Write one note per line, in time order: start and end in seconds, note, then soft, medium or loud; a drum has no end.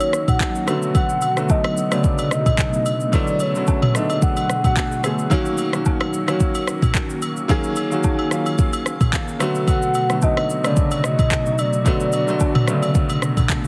0.00 0.64 D#3 medium
0.00 0.70 D#3 loud
0.00 0.67 F#3 medium
0.00 9.36 F#3 medium
0.00 0.64 A#3 medium
0.00 0.69 A#3 medium
0.00 0.64 C#4 medium
0.00 0.70 C#4 medium
0.00 0.70 D#4 loud
0.00 0.69 F#4 medium
0.00 2.82 F#4 medium
0.00 0.28 C#5 medium
0.00 high agogo medium
0.00 shaker medium
0.13 cross-stick medium
0.13 shaker medium
0.28 0.65 F#5 medium
0.28 kick medium
0.28 mid tom medium
0.28 high agogo medium
0.28 shaker soft
0.40 kick medium
0.40 clap loud
0.40 low woodblock medium
0.40 shaker medium
0.55 shaker medium
0.66 5.27 B2 medium
0.66 1.22 D3 medium
0.66 1.22 F#3 medium
0.66 5.27 A3 medium
0.66 1.22 A3 medium
0.66 5.27 B3 medium
0.66 1.23 B3 medium
0.66 1.23 F#4 medium
0.66 cross-stick medium
0.66 high agogo medium
0.66 shaker medium
0.82 shaker medium
0.95 1.52 F#5 loud
0.95 kick loud
0.95 high agogo medium
0.95 shaker medium
1.09 shaker medium
1.21 high agogo medium
1.21 shaker medium
1.36 1.79 D3 medium
1.36 1.80 F#3 medium
1.36 1.80 A3 medium
1.36 1.80 B3 medium
1.36 1.81 F#4 medium
1.36 cross-stick medium
1.36 shaker medium
1.49 1.94 D#5 loud
1.49 kick medium
1.49 low woodblock medium
1.49 shaker medium
1.64 cross-stick medium
1.64 high agogo medium
1.77 shaker medium
1.90 2.79 C#3 medium
1.90 2.78 D3 medium
1.90 2.78 F#3 medium
1.90 2.79 A3 medium
1.90 2.79 B3 medium
1.90 2.34 D5 loud
1.90 cross-stick medium
1.90 high agogo medium
1.90 shaker medium
2.04 kick loud
2.04 shaker medium
2.18 high agogo medium
2.18 shaker medium
2.31 3.14 D#5 loud
2.31 cross-stick medium
2.31 shaker medium
2.46 kick medium
2.46 mid tom medium
2.46 high agogo medium
2.46 shaker medium
2.58 kick medium
2.58 clap loud
2.58 low woodblock medium
2.58 shaker medium
2.73 shaker medium
2.86 5.29 G#4 medium
2.86 high agogo medium
2.86 shaker medium
3.00 shaker medium
3.12 3.46 D3 medium
3.12 3.46 F#3 medium
3.12 3.46 A3 medium
3.12 3.47 B3 medium
3.12 3.47 E4 loud
3.12 3.43 D5 loud
3.12 kick loud
3.12 high agogo medium
3.12 shaker medium
3.27 shaker medium
3.40 3.97 C#5 loud
3.40 high agogo medium
3.40 shaker medium
3.54 3.87 D3 medium
3.54 3.87 F#3 medium
3.54 3.88 A3 medium
3.54 3.88 B3 medium
3.54 3.88 F#4 medium
3.54 shaker medium
3.67 kick medium
3.67 low woodblock medium
3.67 shaker medium
3.82 mid tom loud
3.82 high agogo medium
3.94 4.82 D3 medium
3.94 4.83 F#3 medium
3.94 4.83 A3 medium
3.94 4.83 B3 medium
3.94 4.84 D4 medium
3.94 4.23 D#5 medium
3.94 cross-stick medium
3.94 shaker medium
4.10 high agogo medium
4.10 shaker medium
4.22 4.62 F#5 loud
4.22 kick loud
4.22 shaker medium
4.37 high agogo medium
4.37 shaker medium
4.50 cross-stick medium
4.50 shaker medium
4.64 5.02 F#5 medium
4.64 kick medium
4.64 mid tom medium
4.64 high agogo medium
4.64 shaker soft
4.76 kick medium
4.76 clap loud
4.76 low woodblock medium
4.76 shaker medium
4.92 shaker medium
5.03 5.26 D3 medium
5.03 5.26 F#3 medium
5.03 5.26 A3 medium
5.03 5.27 B3 medium
5.03 5.27 G#4 medium
5.03 cross-stick medium
5.03 high agogo medium
5.03 shaker medium
5.19 shaker medium
5.30 5.64 D#3 loud
5.30 9.36 D#3 medium
5.30 5.64 F#3 loud
5.30 9.36 A#3 medium
5.30 5.65 A#3 loud
5.30 9.36 C#4 medium
5.30 5.65 C#4 loud
5.30 7.47 F#4 medium
5.30 5.65 F#4 loud
5.30 kick loud
5.30 high agogo medium
5.30 shaker medium
5.46 shaker medium
5.58 high agogo medium
5.58 shaker medium
5.72 6.15 D#3 medium
5.72 6.16 F#3 medium
5.72 6.16 A#3 medium
5.72 6.17 C#4 medium
5.72 6.17 F#4 medium
5.72 cross-stick medium
5.72 shaker soft
5.85 kick medium
5.85 low woodblock medium
5.85 shaker medium
6.00 cross-stick medium
6.00 high agogo medium
6.14 shaker medium
6.27 7.14 D#3 medium
6.27 7.15 F#3 medium
6.27 7.15 A#3 medium
6.27 7.15 C#4 medium
6.27 7.16 F#4 medium
6.27 cross-stick medium
6.27 high agogo medium
6.27 shaker medium
6.40 kick loud
6.40 shaker medium
6.55 high agogo medium
6.55 shaker medium
6.67 cross-stick medium
6.67 shaker medium
6.82 kick medium
6.82 mid tom medium
6.82 high agogo medium
6.82 shaker soft
6.94 kick medium
6.94 clap loud
6.94 low woodblock medium
6.94 shaker medium
7.10 shaker medium
7.22 high agogo medium
7.22 shaker medium
7.37 shaker medium
7.48 7.82 D#3 loud
7.48 7.82 F#3 loud
7.48 7.83 A#3 loud
7.48 7.83 C#4 loud
7.48 7.84 G#4 loud
7.48 9.38 F5 loud
7.48 kick loud
7.48 high agogo medium
7.48 shaker medium
7.64 shaker medium
7.76 high agogo medium
7.76 shaker medium
7.90 8.23 D#3 medium
7.90 8.24 F#3 medium
7.90 8.24 A#3 medium
7.90 8.24 C#4 medium
7.90 8.25 F#4 medium
7.90 shaker soft
8.03 kick medium
8.03 low woodblock medium
8.03 shaker medium
8.19 high agogo medium
8.30 9.18 D#3 medium
8.30 9.19 F#3 medium
8.30 9.19 A#3 medium
8.30 9.20 C#4 medium
8.30 9.20 F4 medium
8.30 cross-stick medium
8.30 shaker medium
8.46 high agogo medium
8.46 shaker medium
8.58 kick loud
8.58 shaker medium
8.73 high agogo medium
8.73 shaker medium
8.86 cross-stick medium
8.86 shaker medium
9.01 kick medium
9.01 mid tom medium
9.01 high agogo medium
9.01 shaker soft
9.13 kick medium
9.13 clap loud
9.13 low woodblock medium
9.13 shaker medium
9.28 shaker medium
9.39 13.67 B2 medium
9.39 9.94 D3 medium
9.39 9.95 F#3 medium
9.39 13.67 F#3 medium
9.39 13.67 A3 medium
9.39 9.95 A3 medium
9.39 13.67 B3 medium
9.39 9.95 B3 medium
9.39 13.67 F#4 medium
9.39 9.96 F#4 loud
9.39 cross-stick loud
9.39 high agogo medium
9.39 shaker medium
9.55 shaker medium
9.68 10.25 F#5 loud
9.68 kick loud
9.68 high agogo medium
9.68 shaker medium
9.82 shaker medium
9.94 high agogo medium
9.94 shaker medium
10.09 10.52 D3 medium
10.09 10.52 F#3 medium
10.09 10.53 A3 medium
10.09 10.53 B3 medium
10.09 10.53 F#4 medium
10.09 cross-stick medium
10.09 shaker medium
10.22 10.67 D#5 loud
10.22 kick medium
10.22 low woodblock medium
10.22 shaker medium
10.37 cross-stick medium
10.37 high agogo medium
10.50 shaker medium
10.63 11.52 C#3 medium
10.63 11.51 D3 medium
10.63 11.51 F#3 medium
10.63 11.51 A3 medium
10.63 11.52 B3 medium
10.63 11.05 D5 loud
10.63 cross-stick medium
10.63 high agogo medium
10.63 shaker medium
10.76 kick loud
10.76 shaker medium
10.91 high agogo medium
10.91 shaker medium
11.04 11.61 D#5 loud
11.04 cross-stick medium
11.04 shaker medium
11.19 kick medium
11.19 mid tom medium
11.19 high agogo medium
11.19 shaker soft
11.31 kick medium
11.31 clap loud
11.31 low woodblock medium
11.31 shaker medium
11.46 shaker medium
11.58 13.50 D5 loud
11.58 high agogo medium
11.58 shaker medium
11.73 shaker medium
11.85 12.19 D3 medium
11.85 12.19 F#3 medium
11.85 12.19 A3 medium
11.85 12.20 B3 medium
11.85 12.20 F#4 loud
11.85 kick loud
11.85 high agogo medium
11.85 shaker medium
12.00 shaker medium
12.12 high agogo medium
12.12 shaker loud
12.27 12.60 D3 medium
12.27 12.60 F#3 medium
12.27 12.60 A3 medium
12.27 12.61 B3 medium
12.27 12.61 F#4 loud
12.27 shaker soft
12.40 kick medium
12.40 low woodblock medium
12.40 shaker medium
12.55 mid tom loud
12.55 high agogo medium
12.66 13.56 C#3 medium
12.66 13.55 D3 medium
12.66 13.55 F#3 medium
12.66 13.56 A3 medium
12.66 13.56 B3 medium
12.66 cross-stick medium
12.66 shaker loud
12.83 high agogo medium
12.83 shaker medium
12.95 kick loud
12.95 shaker medium
13.09 high agogo medium
13.09 shaker medium
13.22 cross-stick medium
13.22 shaker medium
13.37 kick medium
13.37 mid tom medium
13.37 high agogo medium
13.37 shaker soft
13.49 kick medium
13.49 clap loud
13.49 low woodblock medium
13.49 shaker medium